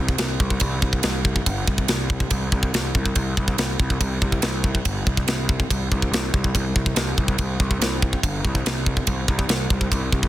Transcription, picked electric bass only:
0, 0, Header, 1, 2, 480
1, 0, Start_track
1, 0, Tempo, 422833
1, 694, Time_signature, 4, 2, 24, 8
1, 11672, End_track
2, 0, Start_track
2, 0, Title_t, "Picked electric bass"
2, 0, Program_c, 0, 34
2, 0, Note_on_c, 0, 36, 80
2, 169, Note_off_c, 0, 36, 0
2, 208, Note_on_c, 0, 36, 80
2, 407, Note_off_c, 0, 36, 0
2, 451, Note_on_c, 0, 36, 88
2, 649, Note_off_c, 0, 36, 0
2, 692, Note_on_c, 0, 36, 91
2, 890, Note_off_c, 0, 36, 0
2, 932, Note_on_c, 0, 36, 85
2, 1130, Note_off_c, 0, 36, 0
2, 1179, Note_on_c, 0, 36, 85
2, 1571, Note_off_c, 0, 36, 0
2, 1663, Note_on_c, 0, 31, 95
2, 1857, Note_off_c, 0, 31, 0
2, 1905, Note_on_c, 0, 36, 88
2, 2099, Note_off_c, 0, 36, 0
2, 2151, Note_on_c, 0, 36, 81
2, 2540, Note_off_c, 0, 36, 0
2, 2622, Note_on_c, 0, 36, 93
2, 2818, Note_off_c, 0, 36, 0
2, 2861, Note_on_c, 0, 36, 87
2, 3057, Note_off_c, 0, 36, 0
2, 3107, Note_on_c, 0, 36, 87
2, 3302, Note_off_c, 0, 36, 0
2, 3348, Note_on_c, 0, 36, 92
2, 3543, Note_off_c, 0, 36, 0
2, 3582, Note_on_c, 0, 36, 88
2, 3779, Note_off_c, 0, 36, 0
2, 3831, Note_on_c, 0, 36, 88
2, 4025, Note_off_c, 0, 36, 0
2, 4062, Note_on_c, 0, 36, 85
2, 4259, Note_off_c, 0, 36, 0
2, 4306, Note_on_c, 0, 36, 90
2, 4502, Note_off_c, 0, 36, 0
2, 4545, Note_on_c, 0, 36, 85
2, 4741, Note_off_c, 0, 36, 0
2, 4792, Note_on_c, 0, 36, 96
2, 4986, Note_off_c, 0, 36, 0
2, 5027, Note_on_c, 0, 36, 86
2, 5420, Note_off_c, 0, 36, 0
2, 5512, Note_on_c, 0, 31, 94
2, 5706, Note_off_c, 0, 31, 0
2, 5750, Note_on_c, 0, 36, 74
2, 5946, Note_off_c, 0, 36, 0
2, 5983, Note_on_c, 0, 36, 87
2, 6378, Note_off_c, 0, 36, 0
2, 6476, Note_on_c, 0, 36, 87
2, 6669, Note_off_c, 0, 36, 0
2, 6716, Note_on_c, 0, 36, 93
2, 6909, Note_off_c, 0, 36, 0
2, 6936, Note_on_c, 0, 36, 88
2, 7137, Note_off_c, 0, 36, 0
2, 7191, Note_on_c, 0, 36, 84
2, 7386, Note_off_c, 0, 36, 0
2, 7434, Note_on_c, 0, 36, 94
2, 7628, Note_off_c, 0, 36, 0
2, 7671, Note_on_c, 0, 36, 78
2, 7865, Note_off_c, 0, 36, 0
2, 7900, Note_on_c, 0, 36, 76
2, 8099, Note_off_c, 0, 36, 0
2, 8152, Note_on_c, 0, 36, 96
2, 8346, Note_off_c, 0, 36, 0
2, 8385, Note_on_c, 0, 36, 85
2, 8581, Note_off_c, 0, 36, 0
2, 8624, Note_on_c, 0, 36, 94
2, 8820, Note_off_c, 0, 36, 0
2, 8846, Note_on_c, 0, 36, 91
2, 9245, Note_off_c, 0, 36, 0
2, 9343, Note_on_c, 0, 31, 89
2, 9539, Note_off_c, 0, 31, 0
2, 9590, Note_on_c, 0, 36, 93
2, 9782, Note_off_c, 0, 36, 0
2, 9825, Note_on_c, 0, 36, 88
2, 10214, Note_off_c, 0, 36, 0
2, 10302, Note_on_c, 0, 36, 102
2, 10496, Note_off_c, 0, 36, 0
2, 10537, Note_on_c, 0, 36, 85
2, 10733, Note_off_c, 0, 36, 0
2, 10768, Note_on_c, 0, 36, 95
2, 10966, Note_off_c, 0, 36, 0
2, 11013, Note_on_c, 0, 36, 95
2, 11209, Note_off_c, 0, 36, 0
2, 11258, Note_on_c, 0, 36, 86
2, 11451, Note_off_c, 0, 36, 0
2, 11492, Note_on_c, 0, 36, 93
2, 11672, Note_off_c, 0, 36, 0
2, 11672, End_track
0, 0, End_of_file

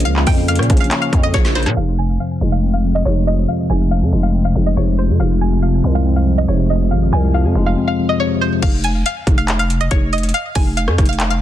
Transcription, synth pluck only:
0, 0, Header, 1, 2, 480
1, 0, Start_track
1, 0, Key_signature, -4, "minor"
1, 0, Tempo, 428571
1, 62, Time_signature, 4, 2, 24, 8
1, 12788, End_track
2, 0, Start_track
2, 0, Title_t, "Synth pluck"
2, 0, Program_c, 0, 84
2, 57, Note_on_c, 0, 77, 104
2, 268, Note_off_c, 0, 77, 0
2, 300, Note_on_c, 0, 79, 90
2, 510, Note_off_c, 0, 79, 0
2, 541, Note_on_c, 0, 77, 81
2, 880, Note_off_c, 0, 77, 0
2, 900, Note_on_c, 0, 77, 79
2, 1110, Note_off_c, 0, 77, 0
2, 1139, Note_on_c, 0, 77, 74
2, 1349, Note_off_c, 0, 77, 0
2, 1382, Note_on_c, 0, 75, 80
2, 1487, Note_off_c, 0, 75, 0
2, 1502, Note_on_c, 0, 73, 80
2, 1711, Note_off_c, 0, 73, 0
2, 1739, Note_on_c, 0, 72, 87
2, 1949, Note_off_c, 0, 72, 0
2, 1979, Note_on_c, 0, 77, 97
2, 2189, Note_off_c, 0, 77, 0
2, 2223, Note_on_c, 0, 80, 85
2, 2432, Note_off_c, 0, 80, 0
2, 2465, Note_on_c, 0, 77, 78
2, 2802, Note_off_c, 0, 77, 0
2, 2822, Note_on_c, 0, 77, 74
2, 3031, Note_off_c, 0, 77, 0
2, 3063, Note_on_c, 0, 77, 81
2, 3272, Note_off_c, 0, 77, 0
2, 3302, Note_on_c, 0, 75, 75
2, 3406, Note_off_c, 0, 75, 0
2, 3419, Note_on_c, 0, 73, 85
2, 3629, Note_off_c, 0, 73, 0
2, 3663, Note_on_c, 0, 75, 87
2, 3872, Note_off_c, 0, 75, 0
2, 3901, Note_on_c, 0, 77, 98
2, 4111, Note_off_c, 0, 77, 0
2, 4141, Note_on_c, 0, 80, 86
2, 4350, Note_off_c, 0, 80, 0
2, 4381, Note_on_c, 0, 77, 78
2, 4720, Note_off_c, 0, 77, 0
2, 4738, Note_on_c, 0, 77, 75
2, 4949, Note_off_c, 0, 77, 0
2, 4980, Note_on_c, 0, 77, 80
2, 5190, Note_off_c, 0, 77, 0
2, 5224, Note_on_c, 0, 75, 78
2, 5327, Note_off_c, 0, 75, 0
2, 5340, Note_on_c, 0, 73, 79
2, 5550, Note_off_c, 0, 73, 0
2, 5583, Note_on_c, 0, 72, 83
2, 5792, Note_off_c, 0, 72, 0
2, 5823, Note_on_c, 0, 77, 101
2, 6032, Note_off_c, 0, 77, 0
2, 6062, Note_on_c, 0, 80, 88
2, 6271, Note_off_c, 0, 80, 0
2, 6299, Note_on_c, 0, 77, 80
2, 6639, Note_off_c, 0, 77, 0
2, 6663, Note_on_c, 0, 77, 73
2, 6872, Note_off_c, 0, 77, 0
2, 6902, Note_on_c, 0, 77, 89
2, 7111, Note_off_c, 0, 77, 0
2, 7143, Note_on_c, 0, 75, 83
2, 7247, Note_off_c, 0, 75, 0
2, 7262, Note_on_c, 0, 73, 89
2, 7471, Note_off_c, 0, 73, 0
2, 7502, Note_on_c, 0, 75, 83
2, 7711, Note_off_c, 0, 75, 0
2, 7738, Note_on_c, 0, 77, 102
2, 7949, Note_off_c, 0, 77, 0
2, 7981, Note_on_c, 0, 80, 98
2, 8191, Note_off_c, 0, 80, 0
2, 8224, Note_on_c, 0, 77, 79
2, 8561, Note_off_c, 0, 77, 0
2, 8584, Note_on_c, 0, 77, 79
2, 8792, Note_off_c, 0, 77, 0
2, 8821, Note_on_c, 0, 77, 79
2, 9030, Note_off_c, 0, 77, 0
2, 9061, Note_on_c, 0, 75, 78
2, 9166, Note_off_c, 0, 75, 0
2, 9182, Note_on_c, 0, 73, 81
2, 9391, Note_off_c, 0, 73, 0
2, 9424, Note_on_c, 0, 72, 83
2, 9632, Note_off_c, 0, 72, 0
2, 9659, Note_on_c, 0, 77, 101
2, 9869, Note_off_c, 0, 77, 0
2, 9904, Note_on_c, 0, 80, 85
2, 10112, Note_off_c, 0, 80, 0
2, 10146, Note_on_c, 0, 77, 82
2, 10483, Note_off_c, 0, 77, 0
2, 10503, Note_on_c, 0, 77, 73
2, 10712, Note_off_c, 0, 77, 0
2, 10744, Note_on_c, 0, 77, 88
2, 10952, Note_off_c, 0, 77, 0
2, 10983, Note_on_c, 0, 75, 77
2, 11087, Note_off_c, 0, 75, 0
2, 11100, Note_on_c, 0, 73, 90
2, 11310, Note_off_c, 0, 73, 0
2, 11344, Note_on_c, 0, 75, 86
2, 11552, Note_off_c, 0, 75, 0
2, 11582, Note_on_c, 0, 77, 101
2, 11791, Note_off_c, 0, 77, 0
2, 11821, Note_on_c, 0, 80, 89
2, 12031, Note_off_c, 0, 80, 0
2, 12062, Note_on_c, 0, 77, 81
2, 12400, Note_off_c, 0, 77, 0
2, 12419, Note_on_c, 0, 77, 75
2, 12629, Note_off_c, 0, 77, 0
2, 12660, Note_on_c, 0, 77, 79
2, 12788, Note_off_c, 0, 77, 0
2, 12788, End_track
0, 0, End_of_file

